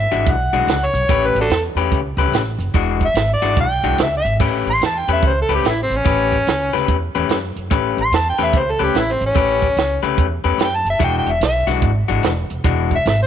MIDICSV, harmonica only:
0, 0, Header, 1, 2, 480
1, 0, Start_track
1, 0, Tempo, 412939
1, 1266, Time_signature, 4, 2, 24, 8
1, 15424, End_track
2, 0, Start_track
2, 0, Title_t, "Harmonica"
2, 0, Program_c, 0, 22
2, 0, Note_on_c, 0, 76, 86
2, 359, Note_on_c, 0, 78, 94
2, 377, Note_off_c, 0, 76, 0
2, 993, Note_on_c, 0, 73, 96
2, 1010, Note_off_c, 0, 78, 0
2, 1469, Note_on_c, 0, 71, 84
2, 1486, Note_off_c, 0, 73, 0
2, 1604, Note_off_c, 0, 71, 0
2, 1636, Note_on_c, 0, 62, 73
2, 1636, Note_on_c, 0, 66, 73
2, 1636, Note_on_c, 0, 69, 104
2, 1706, Note_off_c, 0, 66, 0
2, 1736, Note_off_c, 0, 62, 0
2, 1868, Note_off_c, 0, 69, 0
2, 3545, Note_on_c, 0, 76, 103
2, 3839, Note_off_c, 0, 76, 0
2, 3876, Note_on_c, 0, 74, 102
2, 4165, Note_off_c, 0, 74, 0
2, 4192, Note_on_c, 0, 79, 108
2, 4639, Note_off_c, 0, 79, 0
2, 4677, Note_on_c, 0, 76, 85
2, 4811, Note_off_c, 0, 76, 0
2, 4844, Note_on_c, 0, 76, 102
2, 5075, Note_off_c, 0, 76, 0
2, 5466, Note_on_c, 0, 84, 103
2, 5606, Note_off_c, 0, 84, 0
2, 5639, Note_on_c, 0, 81, 81
2, 5792, Note_on_c, 0, 79, 88
2, 5809, Note_off_c, 0, 81, 0
2, 5929, Note_off_c, 0, 79, 0
2, 5959, Note_on_c, 0, 76, 93
2, 6092, Note_off_c, 0, 76, 0
2, 6123, Note_on_c, 0, 72, 84
2, 6255, Note_off_c, 0, 72, 0
2, 6295, Note_on_c, 0, 69, 85
2, 6445, Note_on_c, 0, 67, 76
2, 6463, Note_off_c, 0, 69, 0
2, 6576, Note_off_c, 0, 67, 0
2, 6606, Note_on_c, 0, 64, 85
2, 6737, Note_off_c, 0, 64, 0
2, 6775, Note_on_c, 0, 60, 91
2, 6937, Note_on_c, 0, 61, 103
2, 6954, Note_off_c, 0, 60, 0
2, 7839, Note_off_c, 0, 61, 0
2, 9317, Note_on_c, 0, 84, 95
2, 9476, Note_on_c, 0, 81, 86
2, 9493, Note_off_c, 0, 84, 0
2, 9612, Note_off_c, 0, 81, 0
2, 9641, Note_on_c, 0, 79, 99
2, 9812, Note_on_c, 0, 76, 93
2, 9829, Note_off_c, 0, 79, 0
2, 9979, Note_on_c, 0, 72, 90
2, 9997, Note_off_c, 0, 76, 0
2, 10125, Note_on_c, 0, 69, 82
2, 10142, Note_off_c, 0, 72, 0
2, 10276, Note_on_c, 0, 67, 83
2, 10294, Note_off_c, 0, 69, 0
2, 10442, Note_on_c, 0, 64, 100
2, 10459, Note_off_c, 0, 67, 0
2, 10604, Note_on_c, 0, 60, 76
2, 10621, Note_off_c, 0, 64, 0
2, 10735, Note_off_c, 0, 60, 0
2, 10764, Note_on_c, 0, 61, 107
2, 11670, Note_off_c, 0, 61, 0
2, 12365, Note_on_c, 0, 79, 94
2, 12510, Note_on_c, 0, 81, 84
2, 12527, Note_off_c, 0, 79, 0
2, 12646, Note_off_c, 0, 81, 0
2, 12671, Note_on_c, 0, 76, 109
2, 12806, Note_off_c, 0, 76, 0
2, 12834, Note_on_c, 0, 79, 93
2, 12968, Note_off_c, 0, 79, 0
2, 12995, Note_on_c, 0, 79, 87
2, 13152, Note_on_c, 0, 76, 85
2, 13169, Note_off_c, 0, 79, 0
2, 13286, Note_off_c, 0, 76, 0
2, 13305, Note_on_c, 0, 76, 100
2, 13586, Note_off_c, 0, 76, 0
2, 15057, Note_on_c, 0, 76, 93
2, 15194, Note_off_c, 0, 76, 0
2, 15211, Note_on_c, 0, 76, 76
2, 15351, Note_off_c, 0, 76, 0
2, 15373, Note_on_c, 0, 72, 99
2, 15424, Note_off_c, 0, 72, 0
2, 15424, End_track
0, 0, End_of_file